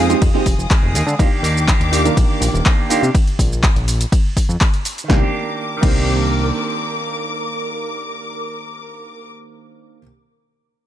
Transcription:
Already playing: F2 G#3 G#4 F5 D#6
0.09 G#3 C4 D#4 F4 G4 G#4, closed hi-hat, shaker
0.22 F2, kick, closed hi-hat, ride, shaker
0.34 G#3 C4 D#4 F4 G4 G#4
0.46 F1, kick, open hi-hat, shaker
0.58 F1, shaker
0.70 D#3 G#3 C4 G#4, kick, clap, closed hi-hat, ride, shaker
0.83 F1
0.94 D#2 D#3 G#3 C4 G#4, open hi-hat, shaker
1.07 D3 G#3 C4 G#4, shaker
1.19 D#2 D#3 A#3 D4 D#4 F4 G4 D6, kick, closed hi-hat, ride, shaker
1.43 D#2 D#3 A#3 D4 G4, open hi-hat, shaker
1.57 shaker
1.68 D#3 A#3 D4 G4, kick, clap, closed hi-hat, ride, shaker
1.80 D#2, closed hi-hat
1.92 D#3 A#3 D4 D#4 F4 G4, open hi-hat, shaker
2.04 D#3 A#3 D4 F4 G4 A#4, closed hi-hat, shaker
2.17 A#1, kick, closed hi-hat, ride, shaker
2.29 A#3 D4 G4
2.41 A#1, open hi-hat, shaker
2.54 D#1, shaker
2.65 D#3 A#3 D4 G4, kick, clap, closed hi-hat, ride, shaker
2.89 D#3 A#3 D4 D#4 F4 G4, open hi-hat, shaker
3.02 C3 A#3 D4 G4, shaker
3.15 kick, closed hi-hat, ride, shaker
3.27 closed hi-hat
3.39 A#1, kick, open hi-hat, shaker
3.52 shaker
3.63 kick, clap, closed hi-hat, ride, shaker
3.76 A#1, closed hi-hat
3.88 open hi-hat, shaker
4.01 closed hi-hat, shaker
4.12 kick, closed hi-hat, ride, shaker
4.37 kick, open hi-hat, shaker
4.49 F2, shaker
4.61 kick, clap, closed hi-hat, ride, shaker
4.74 closed hi-hat
4.85 open hi-hat, shaker
4.98 closed hi-hat, shaker
5.04 D#3
5.08 C2 D#3 A#3 C4 D4 G4 A#4 D6, kick, snare
5.17 D4
5.22 G4
5.77 D#3
5.81 C2 D#3 A#3 C4 D4 G4, kick, crash
5.90 D4
5.95 G4

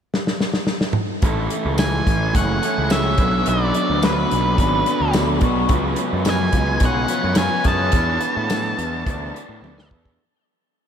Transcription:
0.14 snare
0.27 snare
0.40 snare
0.54 snare
0.67 snare
0.81 snare
0.93 mid tom
1.22 A1 A2 E3 A3 C#4 E4 A4, kick, closed hi-hat
1.50 A3, closed hi-hat
1.65 C#2
1.78 E3 G#5, snare, closed hi-hat, tambourine
2.07 A1 A3, kick, closed hi-hat
2.35 F#1 C#4 F#5, kick, closed hi-hat
2.62 A2 E3 A3 C#4 E4 A4, closed hi-hat
2.78 C#2
2.90 A2 E3 A3 C#4 E4 A4 E5, snare, closed hi-hat, tambourine
3.18 B1 B2 F#3 B3 D4 F#4 B4, kick, closed hi-hat
3.46 B1 F#3 D5, closed hi-hat
3.74 B3, closed hi-hat
3.90 D2
4.03 F#3 B4, snare, closed hi-hat, tambourine
4.31 B1 B3, closed hi-hat
4.58 G#1 B2 F#3 B3 D4 F#4 B4, kick, closed hi-hat
4.86 B2 F#3 B3 D4 F#4 B4, closed hi-hat
5.01 D2
5.13 D4, snare, closed hi-hat, tambourine
5.41 B1 F#4, kick, closed hi-hat
5.69 C#2 C#3 F#3 G#3 C#4 F4 B4, kick, closed hi-hat
5.96 B3, closed hi-hat
6.13 F#2
6.25 F#3, snare, closed hi-hat, tambourine
6.30 G#5
6.53 C#2 B3, kick, closed hi-hat
6.80 B1 C#4, kick, closed hi-hat
6.85 F#5
7.08 C#3 F3 G#3 B3 C#4 F4 B4, closed hi-hat
7.24 F#2
7.35 C#3 C#4 G#5, snare, closed hi-hat, tambourine
7.40 G#3 C#4 F4 B4
7.64 F#2 G#4 A5, kick, closed hi-hat
7.92 E2 E3 B3 D4, kick, closed hi-hat
7.97 G#4 B4
8.21 B3, closed hi-hat
8.37 A2
8.50 E3, snare, closed hi-hat, tambourine
8.79 E2 B3, closed hi-hat
9.06 D2 D4, kick, closed hi-hat
9.34 E3 B3 D4 G#4 B4, closed hi-hat
9.49 A2
9.62 D2 E3 B3 D4 G#4 B4, high tom
9.78 snare
9.91 E2 A4, kick
10.05 kick

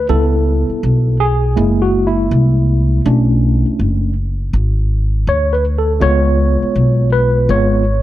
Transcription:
0.09 C#2 G3 B3 E4 A4
0.69 muted upright bass stroke
0.83 B1
1.20 G#4
1.56 F#1 G#3 A#3 E4
1.82 F#4
2.07 E4
2.31 C2
3.05 B1 A3 C#4 D4
3.66 muted upright bass stroke
3.79 F#1
4.53 G#1
5.27 D2 C#5
5.53 B4
5.78 A4
6.00 C#2 G#3 B3 F4 C#5
6.62 muted upright bass stroke
6.76 B1
7.13 B4
7.49 G#1 G#3 B3 F4 C#5

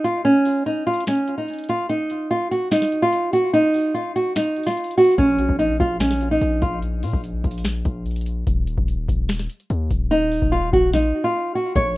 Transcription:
0.04 F4, closed hi-hat
0.25 C#4, closed hi-hat
0.45 open hi-hat
0.66 D#4, closed hi-hat
0.87 F4, closed hi-hat
0.94 closed hi-hat
1.00 closed hi-hat
1.07 C#4, finger snap, snare, closed hi-hat
1.28 closed hi-hat
1.38 D#4
1.48 closed hi-hat
1.54 closed hi-hat
1.59 closed hi-hat
1.64 closed hi-hat
1.69 F4, closed hi-hat
1.89 D#4, closed hi-hat
2.10 closed hi-hat
2.31 F4, closed hi-hat
2.51 F#4, closed hi-hat
2.71 D#4, finger snap, snare, closed hi-hat
2.82 snare
2.92 closed hi-hat
3.02 F4, closed hi-hat
3.13 closed hi-hat
3.33 F#4, closed hi-hat
3.53 D#4, closed hi-hat
3.74 open hi-hat
3.94 F4, closed hi-hat
4.16 F#4, closed hi-hat
4.36 D#4, finger snap, snare, closed hi-hat
4.57 closed hi-hat
4.63 F4, snare, closed hi-hat
4.70 closed hi-hat
4.77 closed hi-hat
4.84 closed hi-hat
4.91 closed hi-hat
4.98 F#4, closed hi-hat
5.04 closed hi-hat
5.11 closed hi-hat
5.18 A#1 C#4, kick, closed hi-hat
5.39 closed hi-hat
5.49 A#1, kick
5.59 D#4, closed hi-hat
5.80 A#1 F4, kick, closed hi-hat
6.00 C#4, finger snap, snare, closed hi-hat
6.11 snare
6.21 closed hi-hat
6.31 D#4, closed hi-hat
6.41 A#1, closed hi-hat
6.62 A#1 F4, kick, closed hi-hat
6.82 closed hi-hat
7.03 A#2, open hi-hat
7.13 A#1, kick
7.24 closed hi-hat
7.44 A#1, kick, closed hi-hat
7.51 closed hi-hat
7.58 closed hi-hat
7.64 finger snap, snare, closed hi-hat
7.85 A#1, kick, closed hi-hat
8.06 closed hi-hat
8.11 closed hi-hat
8.16 closed hi-hat
8.21 closed hi-hat
8.26 closed hi-hat
8.47 D#1, kick, closed hi-hat
8.67 closed hi-hat
8.78 D#1, kick
8.88 closed hi-hat
9.09 D#1, kick, closed hi-hat
9.29 finger snap, snare, closed hi-hat
9.39 snare
9.50 closed hi-hat
9.60 closed hi-hat
9.70 D#2, closed hi-hat
9.91 D#1, kick, closed hi-hat
10.11 D#4, closed hi-hat
10.32 open hi-hat
10.42 D#1, kick
10.52 F4, closed hi-hat
10.73 D#1 F#4, kick, closed hi-hat
10.93 D#4, kick, snare
11.24 F4
11.55 F#4
11.76 A#1 C#5, kick, closed hi-hat

